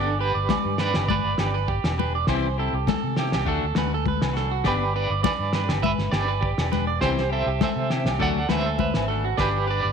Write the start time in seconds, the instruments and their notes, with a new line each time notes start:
Already playing: fingered electric bass G1, clean electric guitar D4 A4 D5
0.19 clean electric guitar D4 G4 B4
0.23 clean electric guitar G4
0.35 fingered electric bass G1, clean electric guitar D5
0.49 clean electric guitar D5, kick, snare, high conga, low agogo
0.65 fingered electric bass G2
0.78 clean electric guitar D4 G4 B4 D5, snare
0.82 clean electric guitar B4
0.94 fingered electric bass G1, clean electric guitar G4, snare, low agogo
1.08 clean electric guitar B4 D5, kick, muted conga, high conga
1.25 fingered electric bass G1
1.38 fingered electric bass G1, clean electric guitar D4 G4, snare, muted conga, low agogo
1.54 clean electric guitar B4
1.68 clean electric guitar G4, kick
1.84 fingered electric bass E1, snare, low agogo
1.98 clean electric guitar D4 G4 B4, high conga
2.15 clean electric guitar D5
2.27 fingered electric bass C2, clean electric guitar E3 C4 E4 G4 C5, kick, snare, muted conga, low agogo
2.58 clean electric guitar C4 E4 G4 A4
2.73 fingered electric bass C2, clean electric guitar G4
2.87 clean electric guitar A4, kick, snare, high conga, low agogo
3.04 fingered electric bass C3
3.17 clean electric guitar C4 E4 G4, snare, muted conga
3.32 fingered electric bass C2, clean electric guitar G4, snare, low agogo
3.46 fingered electric bass D2, clean electric guitar A3 D4 F#4 A4, kick, muted conga
3.63 fingered electric bass D2
3.75 fingered electric bass D2, clean electric guitar D4 F#4 B4, snare, muted conga, high conga, low agogo
3.94 clean electric guitar A4
4.06 clean electric guitar B4, kick, high conga
4.21 fingered electric bass C2, snare, low agogo
4.33 clean electric guitar D4 F#4 A4, snare
4.51 clean electric guitar F#4
4.64 fingered electric bass G1, clean electric guitar B3 D4 G4 B4 D5, kick, snare, muted conga, low agogo
4.69 clean electric guitar G4
4.93 clean electric guitar D4 G4 B4 D5
5.10 fingered electric bass G1, clean electric guitar D5
5.23 clean electric guitar B4 D5, kick, snare, high conga, low agogo
5.39 fingered electric bass G2
5.52 clean electric guitar D4 G4 B4, snare, muted conga
5.69 fingered electric bass G1, clean electric guitar G4, snare, low agogo
5.82 clean electric guitar B4 E5, kick, muted conga, high conga
5.98 fingered electric bass G1, snare
6.11 fingered electric bass G1, clean electric guitar D4 G4 B4 D5, snare, muted conga, low agogo
6.28 clean electric guitar B4
6.41 clean electric guitar G4, kick
6.58 fingered electric bass E1, snare, low agogo
6.71 clean electric guitar D4 G4 B4, snare, high conga
6.87 clean electric guitar D5
7.01 fingered electric bass C2, clean electric guitar E3 C4 E4 G4 C5, kick, snare, muted conga, low agogo
7.18 snare
7.29 clean electric guitar C4 E4 G4 A4 C5 E5
7.46 fingered electric bass C2, clean electric guitar G4
7.61 clean electric guitar A4 C5 E5, kick, snare, high conga, low agogo
7.76 fingered electric bass C3
7.90 clean electric guitar C4 E4 G4, snare, muted conga
8.05 fingered electric bass C2, clean electric guitar G4, snare, low agogo
8.19 fingered electric bass D2, clean electric guitar F#3 A3 D4 F#4 A4 D5 F#5, kick, muted conga
8.35 fingered electric bass D2
8.48 fingered electric bass D2, clean electric guitar A3 D4 F#4 B4 C5 E5, snare, muted conga, high conga, low agogo
8.66 clean electric guitar A4
8.79 clean electric guitar B4, kick, high conga
8.94 fingered electric bass G#1, snare, low agogo
9.08 clean electric guitar A3 D4 F#4 A4
9.25 clean electric guitar F#4
9.37 fingered electric bass G1, clean electric guitar D4 G4 B4 D5, muted clean electric guitar stroke, kick, snare, muted conga, low agogo
9.67 clean electric guitar D4 G4 B4 D5
9.83 fingered electric bass G1, clean electric guitar D5